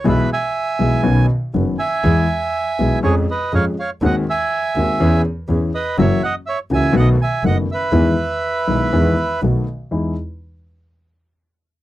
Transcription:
<<
  \new Staff \with { instrumentName = "Bandoneon" } { \time 4/4 \key e \major \tempo 4 = 122 << { e''8 gis''2 r4 gis''8~ | gis''2 cis''8 dis''8 eis''8 eis''8 | fis''8 gis''2 r4 dis''8 | e''8 fis''8 e''8 gis''8 fis''8 gis''8 fis''8 e''8~ |
e''2. r4 | r1 | } \\ { b'8 e''4. r4. e''8~ | e''2 gis'8 b'8 cis''8 cis''8 | dis''8 e''2 r4 b'8 | cis''8 dis''8 cis''8 e''8 dis''8 e''8 dis''8 b'8~ |
b'2. r4 | r1 | } >> }
  \new Staff \with { instrumentName = "Grand piano" } { \clef bass \time 4/4 \key e \major <b,, b, e gis b gis'>8 r4 <b,, b, e gis b gis'>8 <b,, b, dis b cis' fis'>8 r8 <fis,, fis, dis b cis' fis'>8 r8 | <e, e gis b gis'>8 r4 <b,, b, e gis b gis'>8 <eis, eis gis cis' gis'>8 r8 <eis, eis gis cis' gis'>8 r8 | <dis, dis gis bis fis'>8 r4 <dis, dis gis bis fis'>8 <e, e b cis' gis'>8 r8 <e, e b cis' gis'>8 r8 | <fis, e fis ais cis' fis'>8 r4 <cis, cis e ais cis' fis'>8 <b,, b, dis a b fis'>8 r8 <fis,, fis, dis a b fis'>8 r8 |
<e, dis e gis b e'>8 r4 <b,, b, dis gis b e'>8 <e, dis e gis b e'>8 r8 <b,, b, dis a b fis'>8 r8 | <e, gis dis' e'>8 r2. r8 | }
  \new Staff \with { instrumentName = "Double bass" } { \clef bass \time 4/4 \key e \major b,,8 r4 b,,8 b,,8 r8 fis,,8 r8 | e,8 r4 b,,8 eis,8 r8 eis,8 r8 | dis,8 r4 dis,8 e,8 r8 e,8 r8 | fis,,8 r4 cis,8 b,,8 r8 fis,,8 r8 |
e,8 r4 b,,8 e,8 r8 b,,8 r8 | e,8 r2. r8 | }
>>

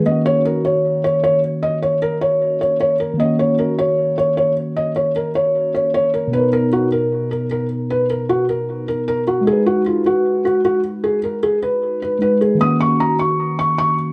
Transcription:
<<
  \new Staff \with { instrumentName = "Felt piano" } { \time 4/4 \key ees \minor \tempo 4 = 153 ees''8 des''8 bes'8 des''4 des''8 des''8 r8 | ees''8 des''8 bes'8 des''4 des''8 des''8 bes'8 | ees''8 des''8 bes'8 des''4 des''8 des''8 r8 | ees''8 des''8 bes'8 des''4 des''8 des''8 bes'8 |
b'8 ais'8 fis'8 ais'4 ais'8 ais'8 r8 | b'8 ais'8 fis'8 ais'4 ais'8 ais'8 fis'8 | aes'8 ges'8 f'8 ges'4 ges'8 ges'8 r8 | aes'8 bes'8 aes'8 ces''4 ces''8 ces''8 aes'8 |
ees'''8 des'''8 bes''8 des'''4 des'''8 des'''8 r8 | }
  \new Staff \with { instrumentName = "Tine electric piano" } { \time 4/4 \key ees \minor <ees bes des' ges'>1~ | <ees bes des' ges'>1 | <ees bes des' ges'>1~ | <ees bes des' ges'>1 |
<b, b dis' ais'>1~ | <b, b dis' ais'>1 | <aes ees' ges' ces''>1~ | <aes ees' ges' ces''>2. <aes ees' ges' ces''>4 |
<ees bes des' ges'>1 | }
>>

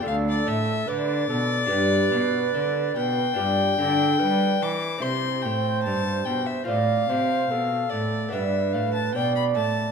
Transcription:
<<
  \new Staff \with { instrumentName = "Violin" } { \time 4/4 \key g \mixolydian \tempo 4 = 73 f''16 d''16 e''8 d''2~ d''8 g''8~ | g''4. d'''8 c'''8 g''8 a''8 g''16 e''16 | f''4. d''8 e''8 f''16 a''16 g''16 b''16 a''8 | }
  \new Staff \with { instrumentName = "Flute" } { \time 4/4 \key g \mixolydian a'4 b'8 a'8 b'2 | g'8 a'8 b'8 r8 c''2 | d''8 c''8 a'4 b'4 d''4 | }
  \new Staff \with { instrumentName = "Lute" } { \time 4/4 \key g \mixolydian <d' f' a'>2 <d' g' b'>2 | <d' f' b'>2 <c' e' c''>2 | <c' f' c''>2 <b d' d''>2 | }
  \new Staff \with { instrumentName = "Lute" } { \clef bass \time 4/4 \key g \mixolydian d,8 a,8 d8 b,8 g,8 b,8 d8 b,8 | g,8 d8 g8 e8 c8 a,8 g,8 b,8 | a,8 c8 b,8 a,8 g,8 a,8 b,8 a,8 | }
  \new Staff \with { instrumentName = "Cello" } { \clef bass \time 4/4 \key g \mixolydian d,8 a,8 d8 b,8 g,8 b,8 d8 b,8 | g,8 d8 g8 e8 c8 a,8 g,8 b,8 | a,8 c8 b,8 a,8 g,8 a,8 b,8 a,8 | }
>>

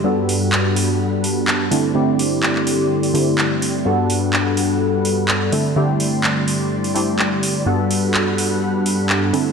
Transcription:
<<
  \new Staff \with { instrumentName = "String machine" } { \time 4/4 \key g \major \tempo 4 = 126 << { <fis'' b''>2.~ <fis'' b''>8 <d'' c'''>8~ | <d'' c'''>1 | <fis'' b''>2.~ <fis'' b''>8 <d'' c'''>8~ | <d'' c'''>1 |
<fis'' b''>2.~ <fis'' b''>8 <d'' c'''>8 | } \\ { g1~ | g1~ | g2.~ g8 g8~ | g1~ |
g1 | } >> }
  \new Staff \with { instrumentName = "Analog polysynth" } { \time 4/4 \key g \major <g, b d' fis' a'>2.~ <g, b d' fis' a'>8 <d a c' e' a'>8 | <d a c' e' g'>2~ <d a c' e' g'>8 <d a c' e' g'>4. | <g, b d' fis' a'>2.~ <g, b d' fis' a'>8 <d a c' e' a'>8 | <d a c' e' g'>2~ <d a c' e' g'>8 <d a c' e' g'>4. |
<g, b d' fis' a'>2.~ <g, b d' fis' a'>8 <d a c' e' a'>8 | }
  \new DrumStaff \with { instrumentName = "Drums" } \drummode { \time 4/4 r8 hho8 hc8 hho8 r8 hho8 hc8 hho8 | r8 hho8 hc16 hc16 hho8 r16 hho16 hho8 hc8 hho8 | r8 hho8 hc8 hho8 r8 hho8 hc8 hho8 | r8 hho8 hc8 hho8 r16 hho16 hho8 hc8 hho8 |
r8 hho8 hc8 hho8 r8 hho8 hc8 hho8 | }
>>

